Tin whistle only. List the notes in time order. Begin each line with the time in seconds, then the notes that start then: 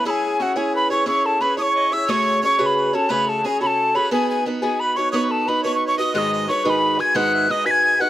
0.07 G#5 B5
0.42 F#5
0.57 G#5
0.75 B5
0.92 C#6
1.08 C#6
1.26 A5
1.41 B5
1.58 C#6 D#6
1.93 E6
2.10 C#6
2.44 C#6
2.61 C#6
2.66 B5
2.95 A5
3.11 B5
3.29 A5
3.46 G#5
3.62 B5
3.67 A5
3.96 B5
4.13 G#5
4.30 G#5
4.62 G#5
4.80 B5
4.97 C#6
5.12 D#6
5.16 C#6
5.31 A5
5.48 B5
5.65 C#6
5.75 C#6
5.88 C#6
5.99 D#6
6.15 D#6 F#6
6.49 C#6
6.66 B5 C#6
7.00 G#6
7.16 F#6
7.51 D#6
7.66 B6
7.71 G#6
8.01 F#6